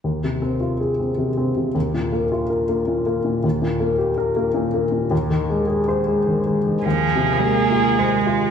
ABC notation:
X:1
M:3/4
L:1/8
Q:1/4=106
K:Fdor
V:1 name="Violin"
z6 | z6 | z6 | z6 |
A6 |]
V:2 name="Cello" clef=bass
z6 | z6 | z6 | z6 |
F,2 B,2 A,2 |]
V:3 name="Upright piano" clef=bass
(3E,, C, C (3F A C (3C, C C, | (3E,, B,, B, (3F B B, (3B,, B, B,, | (3E,, B,, B, (3G B B, (3B,, B, B,, | (3E,, E, A, (3A c A, (3E, A, E, |
E,, C, A, F c F |]